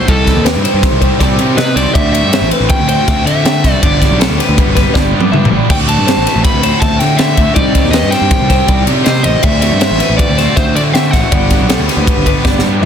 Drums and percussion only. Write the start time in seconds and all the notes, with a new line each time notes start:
0.08 kick, ride
0.27 kick, snare, ride
0.46 snare, ride
0.65 ride
0.83 kick, snare, ride
1.02 kick, ride
1.20 kick, snare, ride
1.39 ride
1.58 snare, ride
1.77 ride
1.95 kick, ride
2.15 ride
2.33 snare, ride
2.51 ride
2.69 kick, ride
2.89 ride
3.08 kick, snare, ride
3.27 ride
3.45 snare, ride
3.64 kick, snare, ride
3.83 kick, ride
4.02 kick, snare, ride
4.21 snare, ride
4.40 snare, ride
4.58 kick, ride
4.77 kick, snare, ride
4.95 kick, snare
5.21 high tom
5.33 mid tom
5.45 mid tom
5.70 kick, crash, splash
5.89 ride
6.08 snare, ride
6.27 snare, ride
6.44 kick, snare, ride
6.63 ride
6.82 kick, snare, ride
7.00 snare, ride
7.19 snare, ride
7.37 kick, ride
7.56 kick, ride
7.75 kick, ride
7.93 snare, ride
8.12 snare, ride
8.31 kick, snare, ride
8.50 kick, snare, ride
8.68 kick, ride
8.87 ride
9.06 snare, ride
9.24 ride
9.43 kick, ride
9.62 snare, ride
9.81 snare, ride
10.00 snare, ride
10.19 kick, ride
10.38 snare, ride
10.57 kick, snare, ride
10.76 ride
10.95 snare, ride
11.13 kick, snare, ride
11.32 kick, ride
11.51 kick, snare, ride
11.70 snare, ride
11.89 snare, ride
12.07 kick, ride
12.26 kick, ride
12.45 kick, snare
12.59 snare